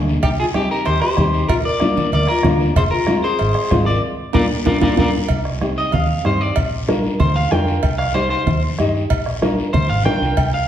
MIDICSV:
0, 0, Header, 1, 7, 480
1, 0, Start_track
1, 0, Tempo, 316957
1, 354, Time_signature, 4, 2, 24, 8
1, 16172, End_track
2, 0, Start_track
2, 0, Title_t, "Clean electric guitar"
2, 0, Program_c, 0, 27
2, 348, Note_on_c, 0, 67, 95
2, 424, Note_off_c, 0, 67, 0
2, 600, Note_on_c, 0, 68, 86
2, 676, Note_off_c, 0, 68, 0
2, 834, Note_on_c, 0, 67, 86
2, 1056, Note_off_c, 0, 67, 0
2, 1079, Note_on_c, 0, 70, 77
2, 1298, Note_off_c, 0, 70, 0
2, 1301, Note_on_c, 0, 72, 96
2, 1521, Note_off_c, 0, 72, 0
2, 1539, Note_on_c, 0, 72, 100
2, 2213, Note_off_c, 0, 72, 0
2, 2248, Note_on_c, 0, 70, 102
2, 2323, Note_off_c, 0, 70, 0
2, 2502, Note_on_c, 0, 74, 98
2, 3174, Note_off_c, 0, 74, 0
2, 3245, Note_on_c, 0, 74, 100
2, 3459, Note_off_c, 0, 74, 0
2, 3460, Note_on_c, 0, 70, 101
2, 3909, Note_off_c, 0, 70, 0
2, 4199, Note_on_c, 0, 72, 93
2, 4274, Note_off_c, 0, 72, 0
2, 4404, Note_on_c, 0, 70, 88
2, 4860, Note_off_c, 0, 70, 0
2, 4905, Note_on_c, 0, 72, 84
2, 5803, Note_off_c, 0, 72, 0
2, 5850, Note_on_c, 0, 74, 78
2, 6079, Note_off_c, 0, 74, 0
2, 6574, Note_on_c, 0, 70, 92
2, 6585, Note_on_c, 0, 65, 96
2, 6586, Note_on_c, 0, 74, 82
2, 6731, Note_off_c, 0, 70, 0
2, 6736, Note_off_c, 0, 74, 0
2, 6738, Note_off_c, 0, 65, 0
2, 7063, Note_on_c, 0, 70, 86
2, 7067, Note_on_c, 0, 74, 76
2, 7068, Note_on_c, 0, 65, 96
2, 7216, Note_off_c, 0, 74, 0
2, 7218, Note_off_c, 0, 70, 0
2, 7219, Note_off_c, 0, 65, 0
2, 7302, Note_on_c, 0, 65, 107
2, 7309, Note_on_c, 0, 70, 107
2, 7320, Note_on_c, 0, 74, 99
2, 7456, Note_off_c, 0, 65, 0
2, 7459, Note_off_c, 0, 70, 0
2, 7466, Note_off_c, 0, 74, 0
2, 7558, Note_on_c, 0, 65, 110
2, 7566, Note_on_c, 0, 70, 96
2, 7573, Note_on_c, 0, 74, 86
2, 7707, Note_off_c, 0, 65, 0
2, 7709, Note_off_c, 0, 70, 0
2, 7709, Note_off_c, 0, 74, 0
2, 8750, Note_on_c, 0, 75, 78
2, 8979, Note_off_c, 0, 75, 0
2, 8993, Note_on_c, 0, 77, 71
2, 9454, Note_off_c, 0, 77, 0
2, 9478, Note_on_c, 0, 72, 82
2, 9705, Note_off_c, 0, 72, 0
2, 9705, Note_on_c, 0, 74, 82
2, 9937, Note_off_c, 0, 74, 0
2, 10903, Note_on_c, 0, 72, 83
2, 11137, Note_off_c, 0, 72, 0
2, 11142, Note_on_c, 0, 77, 88
2, 11374, Note_off_c, 0, 77, 0
2, 11374, Note_on_c, 0, 79, 89
2, 12079, Note_off_c, 0, 79, 0
2, 12089, Note_on_c, 0, 77, 87
2, 12330, Note_on_c, 0, 72, 82
2, 12331, Note_off_c, 0, 77, 0
2, 12556, Note_off_c, 0, 72, 0
2, 12574, Note_on_c, 0, 72, 100
2, 13047, Note_off_c, 0, 72, 0
2, 14735, Note_on_c, 0, 72, 86
2, 14976, Note_off_c, 0, 72, 0
2, 14984, Note_on_c, 0, 77, 89
2, 15217, Note_off_c, 0, 77, 0
2, 15223, Note_on_c, 0, 79, 101
2, 15926, Note_off_c, 0, 79, 0
2, 15964, Note_on_c, 0, 77, 86
2, 16172, Note_off_c, 0, 77, 0
2, 16172, End_track
3, 0, Start_track
3, 0, Title_t, "Clarinet"
3, 0, Program_c, 1, 71
3, 360, Note_on_c, 1, 63, 81
3, 466, Note_off_c, 1, 63, 0
3, 604, Note_on_c, 1, 65, 78
3, 709, Note_off_c, 1, 65, 0
3, 832, Note_on_c, 1, 63, 71
3, 1055, Note_off_c, 1, 63, 0
3, 1080, Note_on_c, 1, 67, 73
3, 1299, Note_off_c, 1, 67, 0
3, 1348, Note_on_c, 1, 67, 83
3, 1547, Note_off_c, 1, 67, 0
3, 1556, Note_on_c, 1, 67, 89
3, 2222, Note_off_c, 1, 67, 0
3, 2265, Note_on_c, 1, 65, 80
3, 2374, Note_off_c, 1, 65, 0
3, 2496, Note_on_c, 1, 70, 90
3, 3170, Note_off_c, 1, 70, 0
3, 3241, Note_on_c, 1, 70, 86
3, 3458, Note_off_c, 1, 70, 0
3, 3487, Note_on_c, 1, 65, 81
3, 3923, Note_off_c, 1, 65, 0
3, 4206, Note_on_c, 1, 68, 75
3, 4309, Note_off_c, 1, 68, 0
3, 4416, Note_on_c, 1, 65, 82
3, 4866, Note_off_c, 1, 65, 0
3, 4896, Note_on_c, 1, 68, 87
3, 5798, Note_off_c, 1, 68, 0
3, 5869, Note_on_c, 1, 70, 74
3, 6089, Note_off_c, 1, 70, 0
3, 6589, Note_on_c, 1, 70, 92
3, 6702, Note_off_c, 1, 70, 0
3, 7067, Note_on_c, 1, 70, 107
3, 7181, Note_off_c, 1, 70, 0
3, 7309, Note_on_c, 1, 70, 95
3, 7422, Note_off_c, 1, 70, 0
3, 7547, Note_on_c, 1, 70, 99
3, 7661, Note_off_c, 1, 70, 0
3, 16172, End_track
4, 0, Start_track
4, 0, Title_t, "Upright piano"
4, 0, Program_c, 2, 0
4, 0, Note_on_c, 2, 58, 85
4, 0, Note_on_c, 2, 62, 69
4, 0, Note_on_c, 2, 68, 90
4, 207, Note_off_c, 2, 58, 0
4, 212, Note_off_c, 2, 68, 0
4, 213, Note_off_c, 2, 62, 0
4, 816, Note_on_c, 2, 60, 71
4, 830, Note_on_c, 2, 63, 65
4, 830, Note_on_c, 2, 67, 77
4, 1159, Note_off_c, 2, 60, 0
4, 1167, Note_off_c, 2, 63, 0
4, 1167, Note_off_c, 2, 67, 0
4, 1782, Note_on_c, 2, 60, 72
4, 1787, Note_on_c, 2, 63, 68
4, 1793, Note_on_c, 2, 67, 82
4, 2122, Note_off_c, 2, 60, 0
4, 2124, Note_off_c, 2, 63, 0
4, 2127, Note_off_c, 2, 67, 0
4, 2735, Note_on_c, 2, 58, 72
4, 2736, Note_on_c, 2, 62, 64
4, 2748, Note_on_c, 2, 65, 79
4, 3077, Note_off_c, 2, 58, 0
4, 3078, Note_off_c, 2, 62, 0
4, 3083, Note_off_c, 2, 65, 0
4, 3692, Note_on_c, 2, 58, 73
4, 3693, Note_on_c, 2, 62, 70
4, 3707, Note_on_c, 2, 65, 86
4, 4035, Note_off_c, 2, 58, 0
4, 4035, Note_off_c, 2, 62, 0
4, 4042, Note_off_c, 2, 65, 0
4, 4641, Note_on_c, 2, 56, 67
4, 4650, Note_on_c, 2, 60, 69
4, 4654, Note_on_c, 2, 65, 76
4, 4988, Note_off_c, 2, 56, 0
4, 4993, Note_off_c, 2, 60, 0
4, 4995, Note_off_c, 2, 65, 0
4, 5614, Note_on_c, 2, 56, 83
4, 5624, Note_on_c, 2, 60, 76
4, 5631, Note_on_c, 2, 65, 99
4, 5954, Note_off_c, 2, 56, 0
4, 5959, Note_off_c, 2, 60, 0
4, 5963, Note_off_c, 2, 65, 0
4, 6582, Note_on_c, 2, 62, 85
4, 6584, Note_on_c, 2, 58, 98
4, 6586, Note_on_c, 2, 65, 88
4, 6736, Note_off_c, 2, 62, 0
4, 6737, Note_off_c, 2, 58, 0
4, 6738, Note_off_c, 2, 65, 0
4, 7058, Note_on_c, 2, 65, 97
4, 7060, Note_on_c, 2, 58, 89
4, 7065, Note_on_c, 2, 62, 98
4, 7213, Note_off_c, 2, 65, 0
4, 7215, Note_off_c, 2, 58, 0
4, 7217, Note_off_c, 2, 62, 0
4, 7289, Note_on_c, 2, 65, 94
4, 7291, Note_on_c, 2, 62, 102
4, 7293, Note_on_c, 2, 58, 103
4, 7448, Note_off_c, 2, 65, 0
4, 7449, Note_off_c, 2, 62, 0
4, 7450, Note_off_c, 2, 58, 0
4, 7512, Note_on_c, 2, 65, 93
4, 7516, Note_on_c, 2, 58, 96
4, 7518, Note_on_c, 2, 62, 95
4, 7677, Note_off_c, 2, 65, 0
4, 7680, Note_off_c, 2, 58, 0
4, 7681, Note_off_c, 2, 62, 0
4, 8494, Note_on_c, 2, 60, 75
4, 8499, Note_on_c, 2, 63, 71
4, 8511, Note_on_c, 2, 67, 79
4, 8834, Note_off_c, 2, 60, 0
4, 8837, Note_off_c, 2, 63, 0
4, 8843, Note_off_c, 2, 67, 0
4, 9445, Note_on_c, 2, 60, 66
4, 9451, Note_on_c, 2, 63, 62
4, 9454, Note_on_c, 2, 67, 71
4, 9790, Note_off_c, 2, 60, 0
4, 9793, Note_off_c, 2, 63, 0
4, 9795, Note_off_c, 2, 67, 0
4, 10413, Note_on_c, 2, 62, 73
4, 10419, Note_on_c, 2, 65, 73
4, 10426, Note_on_c, 2, 70, 86
4, 10755, Note_off_c, 2, 62, 0
4, 10758, Note_off_c, 2, 65, 0
4, 10761, Note_off_c, 2, 70, 0
4, 11374, Note_on_c, 2, 62, 68
4, 11382, Note_on_c, 2, 65, 67
4, 11387, Note_on_c, 2, 70, 82
4, 11716, Note_off_c, 2, 62, 0
4, 11720, Note_off_c, 2, 65, 0
4, 11723, Note_off_c, 2, 70, 0
4, 12334, Note_on_c, 2, 63, 68
4, 12340, Note_on_c, 2, 67, 62
4, 12349, Note_on_c, 2, 72, 71
4, 12677, Note_off_c, 2, 63, 0
4, 12680, Note_off_c, 2, 67, 0
4, 12685, Note_off_c, 2, 72, 0
4, 13307, Note_on_c, 2, 63, 84
4, 13311, Note_on_c, 2, 67, 81
4, 13316, Note_on_c, 2, 75, 91
4, 13644, Note_off_c, 2, 63, 0
4, 13646, Note_off_c, 2, 67, 0
4, 13649, Note_off_c, 2, 75, 0
4, 14251, Note_on_c, 2, 62, 74
4, 14259, Note_on_c, 2, 65, 72
4, 14269, Note_on_c, 2, 70, 84
4, 14597, Note_off_c, 2, 62, 0
4, 14601, Note_off_c, 2, 65, 0
4, 14606, Note_off_c, 2, 70, 0
4, 15217, Note_on_c, 2, 62, 69
4, 15224, Note_on_c, 2, 65, 65
4, 15229, Note_on_c, 2, 70, 72
4, 15560, Note_off_c, 2, 62, 0
4, 15564, Note_off_c, 2, 65, 0
4, 15566, Note_off_c, 2, 70, 0
4, 16172, End_track
5, 0, Start_track
5, 0, Title_t, "Fingered electric bass"
5, 0, Program_c, 3, 33
5, 0, Note_on_c, 3, 38, 93
5, 255, Note_off_c, 3, 38, 0
5, 350, Note_on_c, 3, 36, 100
5, 543, Note_off_c, 3, 36, 0
5, 1313, Note_on_c, 3, 39, 91
5, 1504, Note_off_c, 3, 39, 0
5, 1777, Note_on_c, 3, 39, 91
5, 2166, Note_off_c, 3, 39, 0
5, 2259, Note_on_c, 3, 34, 99
5, 2455, Note_off_c, 3, 34, 0
5, 3215, Note_on_c, 3, 38, 87
5, 3412, Note_off_c, 3, 38, 0
5, 3689, Note_on_c, 3, 38, 90
5, 4079, Note_off_c, 3, 38, 0
5, 4176, Note_on_c, 3, 29, 96
5, 4371, Note_off_c, 3, 29, 0
5, 5157, Note_on_c, 3, 32, 91
5, 5344, Note_off_c, 3, 32, 0
5, 5619, Note_on_c, 3, 32, 95
5, 6004, Note_off_c, 3, 32, 0
5, 6579, Note_on_c, 3, 34, 95
5, 6759, Note_off_c, 3, 34, 0
5, 7058, Note_on_c, 3, 34, 96
5, 7238, Note_off_c, 3, 34, 0
5, 7299, Note_on_c, 3, 34, 100
5, 7479, Note_off_c, 3, 34, 0
5, 7538, Note_on_c, 3, 34, 104
5, 7718, Note_off_c, 3, 34, 0
5, 8022, Note_on_c, 3, 36, 82
5, 8790, Note_off_c, 3, 36, 0
5, 8978, Note_on_c, 3, 39, 81
5, 9364, Note_off_c, 3, 39, 0
5, 9458, Note_on_c, 3, 43, 88
5, 9844, Note_off_c, 3, 43, 0
5, 9948, Note_on_c, 3, 34, 86
5, 10715, Note_off_c, 3, 34, 0
5, 10904, Note_on_c, 3, 38, 88
5, 11289, Note_off_c, 3, 38, 0
5, 11385, Note_on_c, 3, 41, 91
5, 11770, Note_off_c, 3, 41, 0
5, 11860, Note_on_c, 3, 36, 96
5, 12632, Note_off_c, 3, 36, 0
5, 12816, Note_on_c, 3, 39, 85
5, 13205, Note_off_c, 3, 39, 0
5, 13315, Note_on_c, 3, 43, 90
5, 13697, Note_off_c, 3, 43, 0
5, 13784, Note_on_c, 3, 34, 87
5, 14555, Note_off_c, 3, 34, 0
5, 14744, Note_on_c, 3, 38, 80
5, 14939, Note_off_c, 3, 38, 0
5, 14989, Note_on_c, 3, 32, 79
5, 15206, Note_off_c, 3, 32, 0
5, 15223, Note_on_c, 3, 34, 84
5, 15443, Note_off_c, 3, 34, 0
5, 15472, Note_on_c, 3, 36, 92
5, 15688, Note_off_c, 3, 36, 0
5, 15709, Note_on_c, 3, 36, 82
5, 16172, Note_off_c, 3, 36, 0
5, 16172, End_track
6, 0, Start_track
6, 0, Title_t, "Two-headed folk drums"
6, 349, Note_on_c, 9, 36, 87
6, 501, Note_off_c, 9, 36, 0
6, 823, Note_on_c, 9, 37, 80
6, 975, Note_off_c, 9, 37, 0
6, 1537, Note_on_c, 9, 37, 71
6, 1688, Note_off_c, 9, 37, 0
6, 1770, Note_on_c, 9, 37, 81
6, 1777, Note_on_c, 9, 36, 83
6, 1922, Note_off_c, 9, 37, 0
6, 1928, Note_off_c, 9, 36, 0
6, 2254, Note_on_c, 9, 36, 88
6, 2406, Note_off_c, 9, 36, 0
6, 2726, Note_on_c, 9, 37, 76
6, 2877, Note_off_c, 9, 37, 0
6, 3444, Note_on_c, 9, 37, 66
6, 3595, Note_off_c, 9, 37, 0
6, 3683, Note_on_c, 9, 37, 82
6, 3690, Note_on_c, 9, 36, 83
6, 3834, Note_off_c, 9, 37, 0
6, 3841, Note_off_c, 9, 36, 0
6, 4172, Note_on_c, 9, 36, 88
6, 4324, Note_off_c, 9, 36, 0
6, 4643, Note_on_c, 9, 37, 85
6, 4794, Note_off_c, 9, 37, 0
6, 5374, Note_on_c, 9, 37, 70
6, 5525, Note_off_c, 9, 37, 0
6, 5617, Note_on_c, 9, 36, 80
6, 5618, Note_on_c, 9, 37, 82
6, 5768, Note_off_c, 9, 36, 0
6, 5769, Note_off_c, 9, 37, 0
6, 6578, Note_on_c, 9, 36, 102
6, 6730, Note_off_c, 9, 36, 0
6, 7058, Note_on_c, 9, 36, 106
6, 7209, Note_off_c, 9, 36, 0
6, 7299, Note_on_c, 9, 36, 107
6, 7451, Note_off_c, 9, 36, 0
6, 7539, Note_on_c, 9, 36, 106
6, 7691, Note_off_c, 9, 36, 0
6, 8020, Note_on_c, 9, 36, 77
6, 8171, Note_off_c, 9, 36, 0
6, 8256, Note_on_c, 9, 37, 66
6, 8407, Note_off_c, 9, 37, 0
6, 8502, Note_on_c, 9, 37, 81
6, 8654, Note_off_c, 9, 37, 0
6, 8982, Note_on_c, 9, 36, 76
6, 9134, Note_off_c, 9, 36, 0
6, 9463, Note_on_c, 9, 37, 77
6, 9615, Note_off_c, 9, 37, 0
6, 9945, Note_on_c, 9, 36, 80
6, 10097, Note_off_c, 9, 36, 0
6, 10427, Note_on_c, 9, 37, 76
6, 10579, Note_off_c, 9, 37, 0
6, 10904, Note_on_c, 9, 36, 91
6, 11056, Note_off_c, 9, 36, 0
6, 11385, Note_on_c, 9, 37, 76
6, 11537, Note_off_c, 9, 37, 0
6, 11861, Note_on_c, 9, 36, 84
6, 12013, Note_off_c, 9, 36, 0
6, 12098, Note_on_c, 9, 37, 73
6, 12249, Note_off_c, 9, 37, 0
6, 12345, Note_on_c, 9, 37, 86
6, 12496, Note_off_c, 9, 37, 0
6, 12820, Note_on_c, 9, 36, 85
6, 12972, Note_off_c, 9, 36, 0
6, 13304, Note_on_c, 9, 37, 73
6, 13455, Note_off_c, 9, 37, 0
6, 13786, Note_on_c, 9, 36, 81
6, 13937, Note_off_c, 9, 36, 0
6, 14026, Note_on_c, 9, 37, 69
6, 14177, Note_off_c, 9, 37, 0
6, 14269, Note_on_c, 9, 37, 83
6, 14421, Note_off_c, 9, 37, 0
6, 14745, Note_on_c, 9, 36, 88
6, 14896, Note_off_c, 9, 36, 0
6, 15228, Note_on_c, 9, 37, 82
6, 15380, Note_off_c, 9, 37, 0
6, 15705, Note_on_c, 9, 36, 79
6, 15857, Note_off_c, 9, 36, 0
6, 16172, End_track
7, 0, Start_track
7, 0, Title_t, "Drums"
7, 122, Note_on_c, 9, 73, 71
7, 274, Note_off_c, 9, 73, 0
7, 344, Note_on_c, 9, 56, 107
7, 355, Note_on_c, 9, 74, 66
7, 362, Note_on_c, 9, 63, 33
7, 496, Note_off_c, 9, 56, 0
7, 507, Note_off_c, 9, 74, 0
7, 514, Note_off_c, 9, 63, 0
7, 829, Note_on_c, 9, 63, 84
7, 832, Note_on_c, 9, 73, 76
7, 980, Note_off_c, 9, 63, 0
7, 983, Note_off_c, 9, 73, 0
7, 1075, Note_on_c, 9, 73, 75
7, 1227, Note_off_c, 9, 73, 0
7, 1293, Note_on_c, 9, 74, 69
7, 1295, Note_on_c, 9, 56, 82
7, 1308, Note_on_c, 9, 63, 33
7, 1444, Note_off_c, 9, 74, 0
7, 1446, Note_off_c, 9, 56, 0
7, 1459, Note_off_c, 9, 63, 0
7, 1788, Note_on_c, 9, 73, 66
7, 1790, Note_on_c, 9, 63, 87
7, 1940, Note_off_c, 9, 73, 0
7, 1941, Note_off_c, 9, 63, 0
7, 2020, Note_on_c, 9, 73, 67
7, 2171, Note_off_c, 9, 73, 0
7, 2253, Note_on_c, 9, 74, 66
7, 2263, Note_on_c, 9, 56, 109
7, 2270, Note_on_c, 9, 63, 36
7, 2405, Note_off_c, 9, 74, 0
7, 2415, Note_off_c, 9, 56, 0
7, 2422, Note_off_c, 9, 63, 0
7, 2728, Note_on_c, 9, 73, 77
7, 2756, Note_on_c, 9, 63, 90
7, 2879, Note_off_c, 9, 73, 0
7, 2907, Note_off_c, 9, 63, 0
7, 2977, Note_on_c, 9, 73, 73
7, 2988, Note_on_c, 9, 64, 77
7, 3129, Note_off_c, 9, 73, 0
7, 3139, Note_off_c, 9, 64, 0
7, 3213, Note_on_c, 9, 74, 74
7, 3227, Note_on_c, 9, 56, 82
7, 3234, Note_on_c, 9, 63, 35
7, 3365, Note_off_c, 9, 74, 0
7, 3378, Note_off_c, 9, 56, 0
7, 3385, Note_off_c, 9, 63, 0
7, 3701, Note_on_c, 9, 63, 87
7, 3701, Note_on_c, 9, 64, 81
7, 3702, Note_on_c, 9, 73, 67
7, 3707, Note_on_c, 9, 66, 70
7, 3853, Note_off_c, 9, 63, 0
7, 3853, Note_off_c, 9, 64, 0
7, 3853, Note_off_c, 9, 73, 0
7, 3858, Note_off_c, 9, 66, 0
7, 3937, Note_on_c, 9, 73, 69
7, 4088, Note_off_c, 9, 73, 0
7, 4179, Note_on_c, 9, 74, 68
7, 4185, Note_on_c, 9, 56, 112
7, 4185, Note_on_c, 9, 63, 35
7, 4330, Note_off_c, 9, 74, 0
7, 4336, Note_off_c, 9, 56, 0
7, 4336, Note_off_c, 9, 63, 0
7, 4652, Note_on_c, 9, 73, 73
7, 4661, Note_on_c, 9, 63, 84
7, 4804, Note_off_c, 9, 73, 0
7, 4813, Note_off_c, 9, 63, 0
7, 4896, Note_on_c, 9, 73, 80
7, 5047, Note_off_c, 9, 73, 0
7, 5129, Note_on_c, 9, 74, 75
7, 5136, Note_on_c, 9, 56, 89
7, 5155, Note_on_c, 9, 63, 36
7, 5280, Note_off_c, 9, 74, 0
7, 5287, Note_off_c, 9, 56, 0
7, 5306, Note_off_c, 9, 63, 0
7, 5607, Note_on_c, 9, 73, 70
7, 5621, Note_on_c, 9, 66, 72
7, 5626, Note_on_c, 9, 63, 93
7, 5759, Note_off_c, 9, 73, 0
7, 5772, Note_off_c, 9, 66, 0
7, 5777, Note_off_c, 9, 63, 0
7, 5854, Note_on_c, 9, 73, 70
7, 6005, Note_off_c, 9, 73, 0
7, 6560, Note_on_c, 9, 65, 94
7, 6579, Note_on_c, 9, 63, 95
7, 6579, Note_on_c, 9, 74, 102
7, 6712, Note_off_c, 9, 65, 0
7, 6731, Note_off_c, 9, 63, 0
7, 6731, Note_off_c, 9, 74, 0
7, 7054, Note_on_c, 9, 63, 93
7, 7055, Note_on_c, 9, 65, 105
7, 7059, Note_on_c, 9, 74, 98
7, 7206, Note_off_c, 9, 63, 0
7, 7206, Note_off_c, 9, 65, 0
7, 7210, Note_off_c, 9, 74, 0
7, 7289, Note_on_c, 9, 65, 103
7, 7292, Note_on_c, 9, 63, 112
7, 7294, Note_on_c, 9, 74, 99
7, 7440, Note_off_c, 9, 65, 0
7, 7444, Note_off_c, 9, 63, 0
7, 7446, Note_off_c, 9, 74, 0
7, 7531, Note_on_c, 9, 74, 100
7, 7535, Note_on_c, 9, 65, 100
7, 7546, Note_on_c, 9, 63, 102
7, 7682, Note_off_c, 9, 74, 0
7, 7686, Note_off_c, 9, 65, 0
7, 7697, Note_off_c, 9, 63, 0
7, 8004, Note_on_c, 9, 56, 106
7, 8012, Note_on_c, 9, 74, 61
7, 8155, Note_off_c, 9, 56, 0
7, 8164, Note_off_c, 9, 74, 0
7, 8492, Note_on_c, 9, 73, 71
7, 8502, Note_on_c, 9, 63, 81
7, 8643, Note_off_c, 9, 73, 0
7, 8653, Note_off_c, 9, 63, 0
7, 8737, Note_on_c, 9, 73, 70
7, 8888, Note_off_c, 9, 73, 0
7, 8969, Note_on_c, 9, 56, 79
7, 8976, Note_on_c, 9, 74, 70
7, 8987, Note_on_c, 9, 64, 85
7, 9121, Note_off_c, 9, 56, 0
7, 9127, Note_off_c, 9, 74, 0
7, 9139, Note_off_c, 9, 64, 0
7, 9459, Note_on_c, 9, 73, 64
7, 9464, Note_on_c, 9, 63, 84
7, 9610, Note_off_c, 9, 73, 0
7, 9616, Note_off_c, 9, 63, 0
7, 9708, Note_on_c, 9, 73, 60
7, 9860, Note_off_c, 9, 73, 0
7, 9930, Note_on_c, 9, 56, 113
7, 9960, Note_on_c, 9, 74, 67
7, 10082, Note_off_c, 9, 56, 0
7, 10112, Note_off_c, 9, 74, 0
7, 10428, Note_on_c, 9, 63, 80
7, 10435, Note_on_c, 9, 73, 73
7, 10580, Note_off_c, 9, 63, 0
7, 10586, Note_off_c, 9, 73, 0
7, 10662, Note_on_c, 9, 63, 66
7, 10680, Note_on_c, 9, 73, 72
7, 10813, Note_off_c, 9, 63, 0
7, 10831, Note_off_c, 9, 73, 0
7, 10898, Note_on_c, 9, 56, 74
7, 10905, Note_on_c, 9, 64, 86
7, 10921, Note_on_c, 9, 74, 62
7, 11049, Note_off_c, 9, 56, 0
7, 11056, Note_off_c, 9, 64, 0
7, 11072, Note_off_c, 9, 74, 0
7, 11390, Note_on_c, 9, 63, 84
7, 11392, Note_on_c, 9, 73, 61
7, 11541, Note_off_c, 9, 63, 0
7, 11543, Note_off_c, 9, 73, 0
7, 11620, Note_on_c, 9, 73, 65
7, 11771, Note_off_c, 9, 73, 0
7, 11853, Note_on_c, 9, 56, 101
7, 11854, Note_on_c, 9, 74, 69
7, 12005, Note_off_c, 9, 56, 0
7, 12006, Note_off_c, 9, 74, 0
7, 12332, Note_on_c, 9, 73, 69
7, 12337, Note_on_c, 9, 63, 75
7, 12484, Note_off_c, 9, 73, 0
7, 12489, Note_off_c, 9, 63, 0
7, 12582, Note_on_c, 9, 73, 69
7, 12733, Note_off_c, 9, 73, 0
7, 12823, Note_on_c, 9, 64, 88
7, 12825, Note_on_c, 9, 56, 77
7, 12827, Note_on_c, 9, 74, 66
7, 12975, Note_off_c, 9, 64, 0
7, 12976, Note_off_c, 9, 56, 0
7, 12979, Note_off_c, 9, 74, 0
7, 13311, Note_on_c, 9, 63, 83
7, 13311, Note_on_c, 9, 73, 68
7, 13462, Note_off_c, 9, 63, 0
7, 13462, Note_off_c, 9, 73, 0
7, 13553, Note_on_c, 9, 73, 62
7, 13704, Note_off_c, 9, 73, 0
7, 13784, Note_on_c, 9, 56, 106
7, 13793, Note_on_c, 9, 74, 65
7, 13935, Note_off_c, 9, 56, 0
7, 13944, Note_off_c, 9, 74, 0
7, 14269, Note_on_c, 9, 73, 71
7, 14274, Note_on_c, 9, 63, 83
7, 14420, Note_off_c, 9, 73, 0
7, 14426, Note_off_c, 9, 63, 0
7, 14515, Note_on_c, 9, 73, 71
7, 14667, Note_off_c, 9, 73, 0
7, 14744, Note_on_c, 9, 56, 81
7, 14753, Note_on_c, 9, 64, 83
7, 14756, Note_on_c, 9, 74, 71
7, 14896, Note_off_c, 9, 56, 0
7, 14904, Note_off_c, 9, 64, 0
7, 14907, Note_off_c, 9, 74, 0
7, 15228, Note_on_c, 9, 63, 76
7, 15228, Note_on_c, 9, 66, 65
7, 15230, Note_on_c, 9, 73, 73
7, 15379, Note_off_c, 9, 63, 0
7, 15379, Note_off_c, 9, 66, 0
7, 15382, Note_off_c, 9, 73, 0
7, 15478, Note_on_c, 9, 73, 69
7, 15629, Note_off_c, 9, 73, 0
7, 15705, Note_on_c, 9, 56, 110
7, 15723, Note_on_c, 9, 74, 69
7, 15857, Note_off_c, 9, 56, 0
7, 15874, Note_off_c, 9, 74, 0
7, 16172, End_track
0, 0, End_of_file